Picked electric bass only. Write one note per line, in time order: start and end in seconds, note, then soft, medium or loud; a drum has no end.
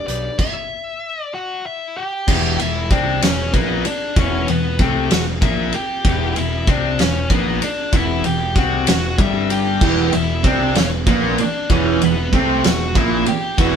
0.08 0.28 B1 medium
2.28 2.57 E1 medium
2.60 2.89 E1 medium
2.91 3.20 C2 loud
3.23 3.52 E1 medium
3.54 3.83 A#1 loud
3.85 muted picked electric bass stroke soft
4.16 4.46 E1 loud
4.49 4.78 E1 medium
4.79 5.09 C2 medium
5.11 5.40 E1 medium
5.42 5.72 A#1 loud
5.75 muted picked electric bass stroke soft
6.05 6.34 E1 medium
6.37 6.66 E1 medium
6.67 6.97 C2 medium
7.00 7.29 E1 medium
7.30 7.60 A#1 loud
7.62 muted picked electric bass stroke soft
7.93 8.23 E1 loud
8.25 8.54 E1 medium
8.56 8.86 C2 loud
8.88 9.17 E1 medium
9.19 9.78 G1 medium
9.81 10.11 E1 medium
10.14 10.43 E1 medium
10.44 10.74 C2 loud
10.76 11.05 E1 medium
11.07 11.36 A#1 loud
11.39 muted picked electric bass stroke soft
11.70 11.99 E1 medium
12.02 12.31 E1 medium
12.33 12.62 C2 loud
12.64 12.93 E1 medium
12.96 13.25 A#1 loud
13.28 muted picked electric bass stroke soft
13.58 13.76 E1 loud